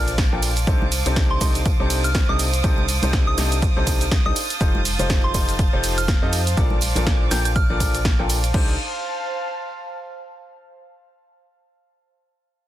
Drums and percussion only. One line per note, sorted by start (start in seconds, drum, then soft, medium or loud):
0.08 closed hi-hat medium
0.08 tambourine medium
0.08 shaker soft
0.18 kick loud
0.18 snare loud
0.18 closed hi-hat medium
0.18 ride medium
0.18 tambourine soft
0.18 shaker soft
0.42 open hi-hat loud
0.42 ride medium
0.42 tambourine medium
0.42 shaker medium
0.56 closed hi-hat medium
0.56 tambourine medium
0.56 shaker soft
0.67 kick loud
0.67 closed hi-hat medium
0.67 ride medium
0.67 tambourine soft
0.67 shaker soft
0.82 high conga medium
0.92 open hi-hat loud
0.92 ride medium
0.92 tambourine loud
0.92 shaker medium
1.06 closed hi-hat medium
1.06 tambourine medium
1.06 high conga medium
1.06 shaker soft
1.16 kick loud
1.16 snare loud
1.16 closed hi-hat medium
1.16 ride medium
1.16 tambourine soft
1.16 shaker soft
1.41 kick medium
1.41 open hi-hat loud
1.41 ride medium
1.41 tambourine loud
1.41 shaker medium
1.55 closed hi-hat medium
1.55 tambourine medium
1.55 shaker soft
1.65 kick loud
1.65 closed hi-hat medium
1.65 ride medium
1.65 tambourine soft
1.65 shaker soft
1.90 open hi-hat loud
1.90 ride medium
1.90 tambourine medium
1.90 shaker medium
2.04 closed hi-hat medium
2.04 tambourine medium
2.04 shaker soft
2.15 kick loud
2.15 snare loud
2.15 closed hi-hat medium
2.15 ride medium
2.15 tambourine soft
2.15 shaker soft
2.39 open hi-hat loud
2.39 ride medium
2.39 tambourine medium
2.39 shaker medium
2.53 closed hi-hat medium
2.53 tambourine medium
2.53 shaker soft
2.64 kick loud
2.64 closed hi-hat medium
2.64 ride medium
2.64 tambourine soft
2.64 shaker soft
2.78 high conga medium
2.89 open hi-hat loud
2.89 ride medium
2.89 tambourine loud
2.89 shaker medium
3.02 closed hi-hat medium
3.02 tambourine medium
3.02 high conga medium
3.02 shaker soft
3.13 kick loud
3.13 snare loud
3.13 closed hi-hat medium
3.13 ride medium
3.13 tambourine soft
3.13 shaker soft
3.38 snare medium
3.38 open hi-hat loud
3.38 ride medium
3.38 tambourine medium
3.38 shaker medium
3.52 closed hi-hat medium
3.52 tambourine medium
3.52 shaker soft
3.61 kick loud
3.61 closed hi-hat medium
3.61 ride medium
3.61 tambourine soft
3.61 shaker soft
3.87 kick medium
3.87 open hi-hat loud
3.87 ride medium
3.87 tambourine loud
3.87 shaker medium
4.00 closed hi-hat medium
4.00 tambourine medium
4.00 shaker soft
4.11 kick loud
4.11 snare loud
4.11 closed hi-hat medium
4.11 ride medium
4.11 tambourine soft
4.11 shaker soft
4.36 open hi-hat loud
4.36 ride medium
4.36 tambourine loud
4.36 shaker medium
4.50 closed hi-hat medium
4.50 tambourine medium
4.50 shaker soft
4.61 kick loud
4.61 closed hi-hat medium
4.61 ride medium
4.61 tambourine soft
4.61 shaker soft
4.75 high conga loud
4.85 open hi-hat loud
4.85 ride medium
4.85 tambourine medium
4.85 shaker medium
4.99 closed hi-hat medium
4.99 tambourine soft
4.99 high conga loud
4.99 shaker soft
5.10 kick loud
5.10 snare loud
5.10 closed hi-hat medium
5.10 ride medium
5.10 tambourine soft
5.10 shaker soft
5.34 kick medium
5.34 open hi-hat loud
5.34 ride medium
5.34 tambourine medium
5.34 shaker medium
5.49 closed hi-hat medium
5.49 tambourine medium
5.49 shaker soft
5.59 kick loud
5.59 closed hi-hat medium
5.59 ride medium
5.59 tambourine soft
5.59 shaker soft
5.84 open hi-hat loud
5.84 ride medium
5.84 tambourine loud
5.84 shaker medium
5.98 closed hi-hat medium
5.98 tambourine soft
5.98 shaker soft
6.08 kick loud
6.08 snare loud
6.08 closed hi-hat medium
6.08 ride medium
6.08 tambourine soft
6.08 shaker soft
6.33 open hi-hat loud
6.33 ride medium
6.33 tambourine medium
6.33 shaker medium
6.47 closed hi-hat medium
6.47 tambourine medium
6.47 shaker medium
6.57 kick loud
6.57 closed hi-hat medium
6.57 ride medium
6.57 tambourine soft
6.57 shaker soft
6.70 high conga medium
6.81 open hi-hat loud
6.81 ride medium
6.81 tambourine medium
6.81 shaker medium
6.95 closed hi-hat medium
6.95 tambourine medium
6.95 high conga loud
6.95 shaker soft
7.07 kick loud
7.07 snare loud
7.07 closed hi-hat medium
7.07 ride medium
7.07 shaker soft
7.31 snare medium
7.31 open hi-hat loud
7.31 ride medium
7.31 tambourine medium
7.31 shaker medium
7.45 closed hi-hat medium
7.45 tambourine medium
7.45 shaker soft
7.56 kick loud
7.56 closed hi-hat medium
7.56 ride medium
7.56 tambourine soft
7.56 shaker soft
7.80 kick medium
7.80 open hi-hat loud
7.80 ride medium
7.80 tambourine loud
7.80 shaker medium
7.94 closed hi-hat medium
7.94 tambourine medium
7.94 shaker soft
8.05 kick loud
8.05 snare loud
8.05 closed hi-hat medium
8.05 ride medium
8.05 shaker soft
8.30 open hi-hat loud
8.30 ride medium
8.30 tambourine medium
8.30 shaker medium
8.44 closed hi-hat medium
8.44 tambourine soft
8.44 shaker soft
8.54 kick loud
8.54 crash medium